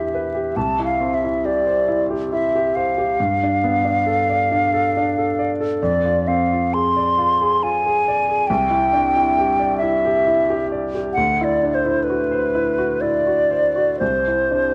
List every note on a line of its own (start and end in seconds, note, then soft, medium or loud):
0.00 0.52 E2 soft
0.00 0.58 D4 soft
0.00 0.59 E4 soft
0.00 0.34 G4 soft
0.00 0.15 B4 soft
0.00 0.58 E5 medium
0.15 0.48 B4 soft
0.34 0.56 G4 soft
0.56 3.14 C2 soft
0.56 0.84 A5 medium
0.79 1.14 E4 soft
0.85 1.16 F5 soft
1.01 1.35 C4 soft
1.14 1.47 E5 soft
1.24 1.58 E4 soft
1.45 1.79 G4 soft
1.45 2.05 D5 soft
1.67 2.01 C5 soft
1.88 2.23 E4 soft
2.10 2.44 G4 soft
2.32 2.66 E4 soft
2.32 2.77 E5 medium
2.55 2.89 G4 soft
2.75 3.10 C5 soft
2.75 5.51 F5 medium
2.98 3.19 G4 soft
3.20 5.77 G2 soft
3.43 3.76 D4 soft
3.64 3.97 B3 soft
3.84 4.19 D4 soft
4.06 4.41 A4 soft
4.30 4.64 D5 soft
4.51 4.86 D4 soft
4.74 5.08 A4 soft
4.97 5.30 D4 soft
5.17 5.51 A4 soft
5.39 5.73 D5 soft
5.61 5.81 A4 soft
5.81 8.46 F2 soft
5.81 6.29 D5 medium
6.05 6.41 F4 soft
6.28 6.65 C4 soft
6.28 6.75 F5 medium
6.53 6.88 F4 soft
6.74 7.10 G#4 soft
6.74 7.64 C6 medium
6.97 7.32 D5 soft
7.18 7.53 F4 soft
7.41 7.76 G#4 soft
7.63 7.98 F4 soft
7.63 8.49 G#5 medium
7.86 8.20 G#4 soft
8.08 8.42 D5 soft
8.29 8.50 G#4 soft
8.47 11.12 C2 soft
8.47 9.77 G5 medium
8.70 9.05 E4 soft
8.93 9.27 D4 soft
9.16 9.50 E4 soft
9.38 9.72 G4 soft
9.60 9.94 D5 soft
9.78 10.67 E5 medium
9.82 10.17 E4 soft
10.05 10.39 G4 soft
10.27 10.62 E4 soft
10.50 10.85 G4 soft
10.72 11.07 D5 soft
10.95 11.16 G4 soft
11.13 11.45 F#5 medium
11.17 13.98 D2 soft
11.41 11.76 E4 soft
11.41 11.76 D5 medium
11.63 11.99 D4 soft
11.74 12.05 C5 soft
11.86 12.22 E4 soft
12.04 13.03 B4 soft
12.10 12.46 F#4 soft
12.31 12.69 C5 soft
12.55 12.93 E4 soft
12.78 13.17 F#4 soft
13.01 13.41 E4 soft
13.01 13.99 D5 medium
13.27 13.66 F#4 soft
13.51 13.91 C5 soft
13.76 14.01 F#4 soft
13.99 14.74 C2 soft
13.99 14.74 C5 medium
14.27 14.67 E4 soft
14.51 14.74 D4 soft